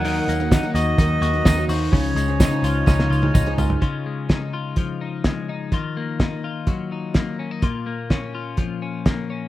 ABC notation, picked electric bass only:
X:1
M:4/4
L:1/16
Q:1/4=126
K:Db
V:1 name="Picked electric bass" clef=bass
E,,2 E,,3 z E,,2 E,,2 E,,2 E,,2 E,,2 | D,,2 D,,3 z D,,2 D,,2 D,,2 D,,2 D,,2 | z16 | z16 |
z16 |]